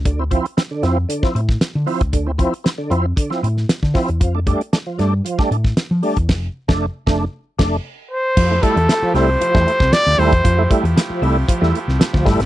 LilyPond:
<<
  \new Staff \with { instrumentName = "Trumpet" } { \time 4/4 \key f \major \tempo 4 = 116 r1 | r1 | r1 | r2. r8 c''8~ |
c''8 a'4 c''4. d''8 c''8~ | c''8 r2. r8 | }
  \new Staff \with { instrumentName = "Pipe organ" } { \time 4/4 \key f \major r1 | r1 | r1 | r1 |
<f a e' g'>1~ | <f a e' g'>1 | }
  \new Staff \with { instrumentName = "Tonewheel organ" } { \time 4/4 \key f \major d16 <c' e'>16 <f c' e'>16 r16 <c' e'>16 d16 <f c' e'>16 r16 d16 <f c' e'>16 <c' e'>16 r8. <f c' e'>16 r16 | d16 <c' e'>16 <f c' e'>16 r16 <c' e'>16 d16 <f c' e'>16 r16 d16 <f c' e'>16 <c' e'>16 r8. <f c' e'>16 r16 | f16 <a d'>16 <g a d'>16 r16 <a d'>16 f16 <g a d'>16 r16 f16 <g a d'>16 <a d'>16 r8. <g a d'>16 r16 | r8. <a d'>8 r16 <a d'>8 r8 <a d'>8 r4 |
f16 <a e'>16 <g a e'>16 r16 <a e'>16 f16 <g a e'>16 r16 f16 <g a e'>16 <a e'>16 r8. <g a e'>16 r16 | f16 <a e'>16 <g a e'>16 r16 <a e'>16 f16 <g a e'>16 r16 f16 <g a e'>16 <a e'>16 r16 <a e'>16 f16 <g a e'>16 r16 | }
  \new Staff \with { instrumentName = "Fingered electric bass" } { \clef bass \time 4/4 \key f \major d,8. r8. f,8 r8 a,8 r16 d16 r16 cis,16 | d,8. r8. f,8 r8 a,8 r16 d16 r16 e,16 | f,8. r8. g,8 r8 a,8 r16 f16 r16 e,16 | f,,8 r16 f,,8 r16 f,,8 r8 f,,8 r4 |
f,8 r16 e,16 r8 c,8 r16 e,16 r16 c,16 r16 d,16 ees,16 e,16 | f,8 r16 e,16 r8 c,8 r16 e,16 r16 c,16 r16 d,16 g,,16 gis,,16 | }
  \new DrumStaff \with { instrumentName = "Drums" } \drummode { \time 4/4 <hh bd>8 <hh bd>16 hh16 <hh sn>8 <hh sn>8 hh16 <bd sn>16 hh16 <bd sn>16 <hh sn>8 hho16 <hh bd>16 | <hh bd>8 <hh bd>16 hh16 <hh sn>8 hh8 <hh bd>16 sn16 hh16 sn16 <hh sn>16 <bd sn>16 <hho bd sn>16 hh16 | <hh bd>8 <hh bd>16 hh16 <hh sn>8 <hh sn>8 hh16 <bd sn>16 hh16 <bd sn>16 <hh sn>8 hho16 <hh bd>16 | <cymc bd sn>8. <bd sn>16 r8 <bd sn>8 r8 <cymc bd sn>8 r4 |
<cymc bd>8 <hh bd>16 hh16 <hh sn>8 <hho sn>8 hh16 <bd sn>16 hh16 <bd sn>16 <hh sn>8 hho16 <hh bd>16 | <hh bd>8 <hh bd>16 hh16 <hh sn>8 hho8 <hh bd>16 sn16 hh16 sn16 <hh sn>16 <bd sn>16 <hho bd sn>16 <hh sn>16 | }
>>